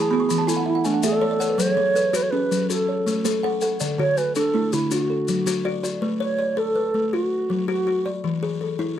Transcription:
Already playing: kalimba A3 E4 G#4, native american-style wooden flute G#4
0.02 kalimba A5
0.11 kalimba B3 F#4 B5
0.20 kalimba C#6
0.29 kalimba E3 B5, maracas
0.38 kalimba A5
0.47 kalimba E4 A4 G#5, native american-style wooden flute E4, maracas
0.57 kalimba F#5
0.66 native american-style wooden flute E4, kalimba E5
0.75 kalimba F#5
0.84 kalimba A3 G#5, native american-style wooden flute D4, maracas
0.94 kalimba F#5
1.03 kalimba A3 A4 E5, native american-style wooden flute G#4, maracas
1.12 native american-style wooden flute A4, kalimba D5
1.22 kalimba A4 C#5
1.31 kalimba D5
1.40 kalimba A4 C#5 F#5, maracas
1.49 kalimba B4
1.58 kalimba F#3 A4, native american-style wooden flute C5, maracas
1.68 kalimba G#4, native american-style wooden flute C#5
1.77 kalimba F#3 A4
1.95 kalimba A4 B4, maracas
2.13 kalimba F#4 C#5, native american-style wooden flute B4, maracas
2.23 native american-style wooden flute C#5
2.31 kalimba C#4 G#4, native american-style wooden flute B4
2.51 kalimba F#3, maracas
2.70 kalimba F#4 A4, native american-style wooden flute A4, maracas
2.89 kalimba C#5
3.06 kalimba A3, maracas
3.25 kalimba A3 A4, maracas
3.43 kalimba A4 F#5
3.61 kalimba A4 F#5, maracas
3.80 kalimba D3 D5, maracas
3.98 kalimba D3 F#4, native american-style wooden flute C#5
4.17 kalimba F#4 G#5, native american-style wooden flute B4, maracas
4.35 kalimba D4 A4, native american-style wooden flute A4, maracas
4.54 kalimba A3 E4
4.73 kalimba D3, native american-style wooden flute E4, maracas
4.91 kalimba D4 F#4, native american-style wooden flute F#4, maracas
5.10 kalimba A4
5.28 kalimba F#3, maracas
5.46 kalimba F#3 F#4, maracas
5.65 kalimba F#4 D5
5.83 kalimba F#4 D5, maracas
6.02 kalimba A3 B4
6.20 kalimba C#5, native american-style wooden flute C#5
6.39 kalimba D5
6.57 kalimba A4, native american-style wooden flute A4
6.75 kalimba B4
6.94 kalimba A3
7.13 kalimba F#4, native american-style wooden flute F#4
7.50 kalimba F#3
7.68 kalimba F#4, native american-style wooden flute F#4
7.87 kalimba F#4
8.06 kalimba D5
8.24 kalimba E3
8.43 kalimba G#4
8.61 kalimba A4
8.79 kalimba E4

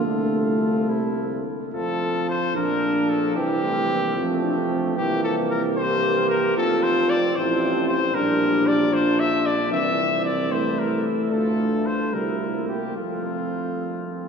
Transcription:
Already playing: trombone D3, trumpet F4
0.04 tuba C2, french horn A3, trumpet A4
0.89 trombone C3, trumpet E4
1.73 tuba F2, trombone F3, trumpet F4 A4
2.29 trumpet C5
2.56 tuba A#1, trombone F3, french horn D4, trumpet D4 A#4
3.10 trumpet A4
3.36 tuba C2, trombone E3, trumpet C4 G4, french horn E4
3.63 french horn A3
3.90 french horn A#3
4.17 tuba F2, trombone F3, trumpet A3, french horn C4
4.44 french horn D4
4.71 french horn C4
4.98 tuba C2, trombone E3, trumpet A#3 G4, french horn E4
5.24 trumpet A4
5.50 trumpet A#4
5.77 trombone E3, trumpet A#3 C5, french horn G4
6.29 trumpet A#4
6.57 tuba F1, trombone F3, trumpet C4 A4, french horn F4
6.83 trumpet C5
7.10 trumpet D5
7.36 tuba A1, trombone F3, trumpet C4 C5, french horn E4
7.88 trumpet C5
8.14 tuba A#1, trombone G3, trumpet D4 A#4, french horn D4
8.67 trumpet D5
8.94 trombone F3, trumpet D4 C5
9.20 trumpet E5
9.46 trumpet D5
9.71 tuba C2, trombone E3, french horn C4, trumpet C4 E5
10.25 trumpet D5
10.51 trombone E3, french horn A3, trumpet E4 C5
10.79 trumpet A#4
11.31 tuba D2, trombone A3, trumpet F4 A4
11.86 trumpet C5
12.12 tuba C2, french horn G3, trombone C4, trumpet E4 A#4
12.54 trombone A#3
12.68 trumpet G4
12.96 tuba F2, french horn A3, trombone A3, trumpet C4 F4

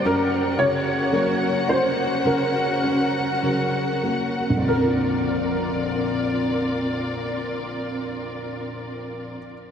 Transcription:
0.04 upright piano F#2, steel-string acoustic guitar F#3 C#4 F#4 A#4, string section C#4 F#4 A#4 F#5, grand piano A#4
0.58 upright piano C#3, steel-string acoustic guitar C#4 F#4 A#4, grand piano C#5
1.12 steel-string acoustic guitar F#3 C#4 F#4 A#4, upright piano A#3
1.67 upright piano C#4, steel-string acoustic guitar C#4 F#4 A#4, grand piano C5
2.24 upright piano C#3, steel-string acoustic guitar F#3 C#4 F#4 A#4, grand piano A#4
2.82 upright piano C#4
3.42 upright piano C#3, steel-string acoustic guitar F#3 C#4 F#4 A#4
4.03 upright piano A#3, steel-string acoustic guitar C#4 F#4 A#4
4.49 upright piano A#1
4.56 upright piano F2
4.63 steel-string acoustic guitar A#2, upright piano D3, string section F4 A#4 D5
4.67 steel-string acoustic guitar D3 F3, upright piano A#3, string section C4, grand piano A#4
4.71 steel-string acoustic guitar C4 D4
4.75 upright piano C4, steel-string acoustic guitar A#4
4.84 upright piano F4

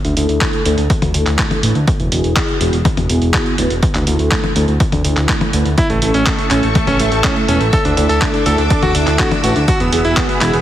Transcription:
0.05 analog synth bass D2, closed hi-hat
0.17 analog synth bass D2, analog polysynth A3 D4 E4 A4, closed hi-hat
0.29 analog synth bass D2, closed hi-hat
0.41 kick, clap, closed hi-hat
0.53 closed hi-hat
0.65 analog synth bass D2, analog polysynth A3 D4 E4 A4, closed hi-hat
0.78 analog synth bass D2, closed hi-hat
0.90 kick, closed hi-hat
1.02 analog synth bass D2, closed hi-hat, high tom
1.14 analog synth bass D2, analog polysynth A3 D4 E4 A4, closed hi-hat
1.27 analog synth bass D2, clap, closed hi-hat
1.39 kick, clap, closed hi-hat
1.51 closed hi-hat, high tom
1.63 analog synth bass A1, analog polysynth A3 D4 E4 B4, closed hi-hat
1.75 analog synth bass D2, closed hi-hat
1.88 kick, closed hi-hat
2.00 analog synth bass E1, closed hi-hat
2.12 analog synth bass E1, analog polysynth B3 E4 F#4 G#4, closed hi-hat
2.24 analog synth bass E1, closed hi-hat
2.36 kick, clap, closed hi-hat
2.49 closed hi-hat
2.61 analog synth bass E1, analog polysynth B3 E4 F#4 G#4, closed hi-hat
2.73 analog synth bass E1, closed hi-hat
2.85 kick, closed hi-hat, high tom
2.97 analog synth bass E1, closed hi-hat, high tom
3.09 analog synth bass E1, analog polysynth B3 E4 F#4 G#4, closed hi-hat
3.22 analog synth bass E1, closed hi-hat
3.34 kick, clap, closed hi-hat
3.46 closed hi-hat
3.58 analog synth bass D1, analog polysynth B3 E4 F#4 B4, closed hi-hat
3.70 analog synth bass E1, closed hi-hat
3.83 kick, closed hi-hat
3.95 analog synth bass D2, clap, closed hi-hat
4.07 analog synth bass D2, analog polysynth A3 D4 E4 A4, closed hi-hat
4.19 analog synth bass D2, closed hi-hat
4.31 kick, clap, closed hi-hat
4.44 closed hi-hat, high tom
4.56 analog synth bass D2, analog polysynth A3 D4 E4 A4, closed hi-hat
4.68 analog synth bass D2, closed hi-hat
4.80 kick, closed hi-hat
4.92 analog synth bass D2, closed hi-hat, high tom
5.05 analog synth bass D2, analog polysynth A3 D4 E4 A4, closed hi-hat
5.17 analog synth bass D2, clap, closed hi-hat
5.29 kick, clap, closed hi-hat
5.41 closed hi-hat, high tom
5.53 analog synth bass D2, analog polysynth A3 D4 E4 B4, closed hi-hat
5.65 analog synth bass D2, closed hi-hat
5.78 electric grand piano E4, string machine A4 E5 C#6 E6, kick, closed hi-hat
5.90 analog synth bass A1, electric grand piano A3, closed hi-hat
6.02 analog synth bass A1, electric grand piano A3, analog polysynth A3 C#4 E4 A4, closed hi-hat
6.14 analog synth bass A1, electric grand piano C#4, closed hi-hat
6.26 electric grand piano A3, kick, clap, closed hi-hat
6.39 electric grand piano A3, closed hi-hat
6.51 analog synth bass A1, analog polysynth A3 C#4 E4 A4, electric grand piano C#4, clap, closed hi-hat
6.63 analog synth bass A1, electric grand piano A3, closed hi-hat
6.75 electric grand piano A3, kick, closed hi-hat, high tom
6.87 analog synth bass A1, electric grand piano C#4, closed hi-hat, high tom
7.00 analog synth bass A1, electric grand piano A3, analog polysynth A3 C#4 E4 A4, closed hi-hat
7.12 analog synth bass A1, electric grand piano A3, closed hi-hat
7.24 electric grand piano C#4, kick, clap, closed hi-hat
7.36 electric grand piano A3, closed hi-hat
7.48 analog synth bass E1, analog polysynth A3 C#4 E4 B4, electric grand piano C#4, closed hi-hat
7.61 analog synth bass A1, electric grand piano A3, closed hi-hat
7.73 string machine A4 D6, electric grand piano A4, kick, closed hi-hat
7.85 analog synth bass D2, electric grand piano D4, closed hi-hat
7.97 analog synth bass D2, analog polysynth A3 D4 E4 A4, electric grand piano D4, closed hi-hat
8.09 analog synth bass D2, electric grand piano A4, closed hi-hat
8.21 electric grand piano D4, kick, clap, closed hi-hat
8.34 electric grand piano D4, closed hi-hat
8.46 analog synth bass D2, analog polysynth A3 D4 E4 A4, electric grand piano A4, closed hi-hat
8.58 analog synth bass D2, electric grand piano D4, closed hi-hat
8.70 electric grand piano D4, kick, closed hi-hat
8.83 analog synth bass D2, electric grand piano F#4, closed hi-hat, high tom
8.95 analog synth bass D2, analog polysynth A3 D4 E4 A4, electric grand piano D4, closed hi-hat
9.07 analog synth bass D2, electric grand piano D4, clap, closed hi-hat
9.19 electric grand piano F#4, kick, clap, closed hi-hat
9.31 electric grand piano D4, closed hi-hat, high tom
9.44 analog synth bass A1, analog polysynth A3 D4 E4 B4, electric grand piano F#4, closed hi-hat
9.56 analog synth bass D2, electric grand piano D4, closed hi-hat
9.68 electric grand piano F#4, string machine G#4 F#5 B5, kick, closed hi-hat
9.80 analog synth bass E1, electric grand piano B3, closed hi-hat
9.92 analog synth bass E1, analog polysynth B3 E4 F#4 G#4, electric grand piano B3, closed hi-hat
10.05 analog synth bass E1, electric grand piano E4, closed hi-hat
10.17 electric grand piano B3, kick, clap, closed hi-hat
10.29 electric grand piano B3, closed hi-hat
10.41 analog synth bass E1, analog polysynth B3 E4 F#4 G#4, electric grand piano E4, clap, closed hi-hat
10.53 analog synth bass E1, electric grand piano B3, closed hi-hat

